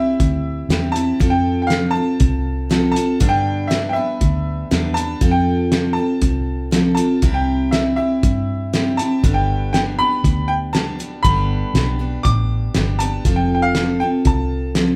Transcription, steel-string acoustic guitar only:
0.00 0.69 C4 soft
0.00 0.70 E4 soft
0.00 0.70 G4 medium
0.70 0.95 G3 medium
0.70 0.95 C4 medium
0.70 0.94 E4 medium
0.70 0.93 G4 medium
0.94 1.19 C4 soft
0.94 1.20 E4 soft
0.94 1.20 G4 medium
1.20 1.69 F3 medium
1.20 1.70 C4 medium
1.20 1.70 F4 medium
1.20 1.71 A4 medium
1.70 1.96 F3 medium
1.70 1.96 C4 medium
1.70 1.95 F4 medium
1.70 1.94 A4 medium
1.95 2.69 C4 soft
1.95 2.70 F4 soft
1.95 2.70 A4 medium
2.69 2.95 F3 medium
2.69 2.95 C4 medium
2.69 2.95 F4 medium
2.69 2.94 A4 medium
2.95 3.20 C4 soft
2.95 3.21 F4 soft
2.95 3.21 A4 medium
3.20 3.71 G2 medium
3.20 3.71 D3 medium
3.20 3.69 G3 medium
3.20 3.69 B3 medium
3.20 3.70 D4 medium
3.20 3.71 B4 medium
3.70 3.96 G3 medium
3.70 3.95 B3 medium
3.70 3.95 D4 medium
3.70 3.94 B4 medium
3.95 4.70 G3 soft
3.95 4.71 B3 soft
3.95 4.71 D4 soft
3.95 4.71 B4 medium
4.71 4.96 G3 medium
4.71 4.96 B3 medium
4.71 4.95 D4 medium
4.71 4.94 B4 medium
4.96 5.21 G3 soft
4.96 5.22 B3 soft
4.96 5.22 D4 medium
4.96 5.21 B4 medium
5.21 5.70 F3 medium
5.21 5.72 C4 medium
5.21 5.71 F4 medium
5.21 5.72 A4 medium
5.72 5.97 F3 medium
5.72 5.97 C4 medium
5.72 5.97 F4 medium
5.72 5.96 A4 medium
5.97 6.71 C4 soft
5.97 6.71 F4 soft
5.97 6.72 A4 medium
6.71 6.97 F3 medium
6.71 6.98 C4 medium
6.71 6.97 F4 medium
6.71 6.96 A4 medium
6.97 7.22 C4 soft
6.97 7.23 F4 soft
6.97 7.22 A4 medium
7.23 7.73 C3 medium
7.23 7.72 G3 medium
7.23 7.72 C4 medium
7.23 7.72 E4 medium
7.23 7.73 G4 medium
7.72 7.98 G3 medium
7.72 7.98 C4 medium
7.72 7.97 E4 medium
7.72 7.96 G4 medium
7.97 8.73 C4 soft
7.97 8.73 E4 soft
7.97 8.75 G4 soft
8.73 8.98 G3 medium
8.73 8.99 C4 medium
8.73 8.99 E4 medium
8.73 8.97 G4 medium
8.98 9.24 C4 soft
8.98 9.24 E4 soft
8.98 9.23 G4 medium
9.23 9.74 G2 medium
9.23 9.74 D3 medium
9.23 9.73 G3 medium
9.23 9.73 B3 medium
9.23 9.74 D4 medium
9.23 9.74 G4 medium
9.74 9.99 G3 medium
9.74 9.98 B3 medium
9.74 9.98 D4 medium
9.74 9.97 G4 medium
9.99 10.72 G3 soft
9.99 10.72 B3 soft
9.99 10.72 D4 soft
9.99 10.74 G4 medium
10.73 10.99 G3 medium
10.73 10.99 B3 medium
10.73 10.98 D4 medium
10.73 10.97 G4 medium
10.99 11.23 G3 soft
10.99 11.24 B3 soft
10.99 11.24 D4 medium
10.99 11.24 G4 medium
11.24 11.74 G2 medium
11.24 11.75 D3 medium
11.24 11.74 G3 medium
11.24 11.74 B3 medium
11.24 11.74 D4 medium
11.24 11.75 G4 medium
11.75 12.00 G3 medium
11.75 11.99 B3 medium
11.75 11.99 D4 medium
11.75 11.98 G4 medium
11.99 12.74 G3 soft
11.99 12.74 B3 soft
11.99 12.75 D4 medium
11.99 12.75 G4 medium
12.75 13.00 G3 medium
12.75 13.00 B3 medium
12.75 13.00 D4 medium
12.75 12.99 G4 medium
13.00 13.25 G3 soft
13.00 13.26 B3 medium
13.00 13.26 D4 medium
13.00 13.25 G4 medium
13.26 13.74 F3 medium
13.26 13.75 C4 medium
13.26 13.76 F4 medium
13.26 13.76 A4 medium
13.76 14.01 F3 medium
13.76 14.01 C4 medium
13.76 14.01 F4 medium
13.76 14.00 A4 medium
14.01 14.75 C4 soft
14.01 14.76 F4 soft
14.01 14.76 A4 medium
14.76 14.96 F3 medium
14.76 14.96 C4 medium
14.76 14.96 F4 medium
14.76 14.96 A4 medium

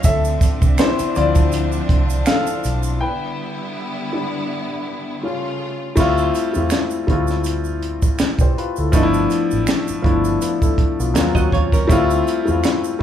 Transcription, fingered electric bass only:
0.05 0.37 D2 loud
0.63 0.77 C2 medium
1.00 muted fingered electric bass stroke soft
1.17 1.80 D2 loud
1.90 2.22 C2 medium
2.65 3.01 B1 medium
5.98 6.29 D2 medium
6.56 6.70 E2 medium
7.09 7.99 D2 medium
8.21 muted fingered electric bass stroke soft
8.40 8.54 C2 medium
8.78 8.92 D2 medium
8.94 9.26 G1 medium
9.53 9.66 A1 medium
9.90 muted fingered electric bass stroke soft
10.05 10.37 G1 medium
10.79 muted fingered electric bass stroke soft
11.00 11.14 B1 medium
11.17 11.34 D#2 medium
11.36 11.50 D#2 medium
11.53 11.85 D#2 medium
11.91 12.22 D2 medium
12.48 12.62 E2 medium

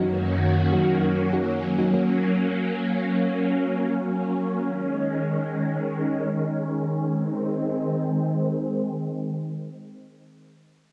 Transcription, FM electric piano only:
0.00 0.55 F#3 medium
0.00 0.55 C#4 medium
0.00 0.55 D#4 medium
0.00 0.55 F#4 medium
0.73 1.19 F#3 medium
0.73 1.19 C#4 medium
0.73 1.19 D#4 medium
0.73 1.19 F#4 medium
1.33 1.68 F#3 medium
1.33 1.68 C#4 medium
1.33 1.68 D#4 medium
1.33 1.68 F#4 medium
1.79 1.94 F#3 medium
1.79 1.93 C#4 medium
1.79 1.94 D#4 medium
1.79 1.93 F#4 medium
1.94 2.18 A#3 medium
1.94 2.18 C#4 medium
1.94 2.18 F#4 loud

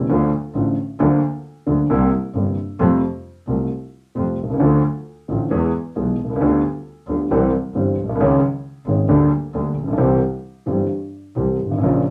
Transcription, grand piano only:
0.10 0.28 D2 medium
0.10 0.28 D3 medium
0.10 0.29 F3 medium
0.10 0.29 A3 medium
0.10 0.29 F4 medium
0.55 0.74 A1 medium
0.55 0.74 A2 medium
0.55 0.74 D3 soft
0.55 0.74 F3 soft
0.55 0.74 A3 soft
0.55 0.74 F4 medium
1.00 1.19 D2 medium
1.00 1.19 D3 medium
1.00 1.19 F3 medium
1.00 1.19 A#3 medium
1.00 1.19 F4 medium
1.66 1.86 D2 medium
1.66 1.86 D3 medium
1.66 1.85 F3 soft
1.66 1.86 A#3 soft
1.66 1.86 F4 soft
1.90 2.08 C2 medium
1.90 2.09 C3 medium
1.90 2.08 G3 medium
1.90 2.08 A#3 medium
1.90 2.09 E4 medium
2.35 2.54 G1 soft
2.35 2.54 G2 soft
2.35 2.54 C3 soft
2.35 2.54 G3 soft
2.35 2.54 A#3 soft
2.35 2.54 E4 soft
2.80 2.99 F2 medium
2.80 2.99 C3 medium
2.80 2.99 F3 medium
2.80 2.99 G3 medium
2.80 2.99 A3 medium
2.80 2.99 F4 medium
3.47 3.67 C2 medium
3.47 3.67 C3 soft
3.47 3.67 G3 soft
3.47 3.67 A3 soft
3.47 3.67 F4 soft
4.15 4.35 F2 soft
4.15 4.34 C3 soft
4.15 4.35 F3 soft
4.15 4.34 G3 soft
4.15 4.35 A3 soft
4.15 4.35 F4 soft
4.43 4.49 B1 soft
4.50 4.56 C2 medium
4.50 4.60 C#2 medium
4.60 4.80 D2 medium
4.60 4.80 D3 medium
4.60 4.80 F3 medium
4.60 4.80 A3 medium
4.60 4.80 F4 medium
5.28 5.48 A1 medium
5.28 5.48 A2 soft
5.28 5.48 D3 soft
5.28 5.48 F3 soft
5.28 5.48 A3 soft
5.28 5.48 F4 soft
5.50 5.70 E2 medium
5.50 5.70 E3 medium
5.50 5.70 G#3 medium
5.50 5.70 B3 medium
5.50 5.70 G#4 medium
5.96 6.15 B1 soft
5.96 6.15 B2 medium
5.96 6.15 E3 soft
5.96 6.15 G#3 soft
5.96 6.15 B3 soft
5.96 6.15 G#4 soft
6.24 6.30 B1 soft
6.30 6.36 C2 medium
6.36 6.41 C#2 medium
6.41 6.60 D2 medium
6.41 6.60 D3 medium
6.41 6.60 G3 medium
6.41 6.60 B3 medium
6.41 6.60 F4 medium
7.09 7.27 D2 medium
7.09 7.27 D3 soft
7.09 7.27 G3 soft
7.09 7.27 B3 soft
7.09 7.27 F4 soft
7.31 7.49 C2 medium
7.31 7.50 C3 medium
7.31 7.49 E3 medium
7.31 7.49 G3 medium
7.31 7.50 C4 medium
7.31 7.49 G4 medium
7.75 7.94 G1 medium
7.75 7.94 G2 medium
7.75 7.93 E3 soft
7.75 7.94 G3 soft
7.75 7.94 C4 soft
7.75 7.94 G4 medium
8.04 8.09 A#1 soft
8.09 8.14 B1 medium
8.15 8.20 C2 medium
8.20 8.39 C#2 medium
8.20 8.39 C#3 medium
8.20 8.38 D#3 medium
8.20 8.39 G#3 medium
8.20 8.39 C#4 medium
8.20 8.39 G#4 medium
8.88 9.06 G#1 medium
8.88 9.06 G#2 medium
8.88 9.06 D#3 soft
8.88 9.06 G#3 soft
8.88 9.06 C#4 soft
8.88 9.06 G#4 soft
9.09 9.28 D2 medium
9.09 9.28 D3 medium
9.09 9.28 G3 medium
9.09 9.28 A#3 medium
9.09 9.28 G4 medium
9.55 9.74 D2 medium
9.55 9.74 D3 medium
9.55 9.74 G3 soft
9.55 9.74 A#3 soft
9.55 9.74 G4 soft
9.83 9.89 A1 soft
9.88 9.93 A#1 medium
9.92 9.99 B1 medium
9.98 10.18 C2 medium
9.98 10.18 C3 medium
9.98 10.17 E3 medium
9.98 10.18 G3 medium
9.98 10.17 C4 medium
9.98 10.18 G4 medium
10.66 10.86 G1 medium
10.66 10.86 G2 soft
10.66 10.86 E3 soft
10.66 10.86 G3 soft
10.66 10.86 C4 soft
10.66 10.86 G4 soft
11.36 11.55 C2 soft
11.36 11.55 C3 soft
11.36 11.55 E3 soft
11.36 11.55 G3 soft
11.36 11.55 C4 soft
11.36 11.55 G4 soft
11.66 11.71 G1 soft
11.71 11.76 G#1 medium
11.78 11.83 A1 medium
11.83 12.02 A#1 medium
11.83 12.01 A#2 medium
11.83 12.01 C#3 medium
11.83 12.02 F3 medium
11.83 12.01 A#3 medium
11.83 12.02 F4 medium

